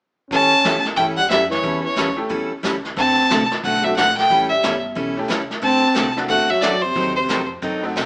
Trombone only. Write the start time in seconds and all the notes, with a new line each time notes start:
0.30 C#4
0.97 A3
1.17 G3
1.29 G3
1.49 E3
1.84 E3
2.99 C4
3.64 A3
3.84 F#3
3.97 A3
4.18 A3
4.50 G3
5.63 C4
6.29 A3
6.50 F#3
6.63 F#3
6.84 C3
7.18 C3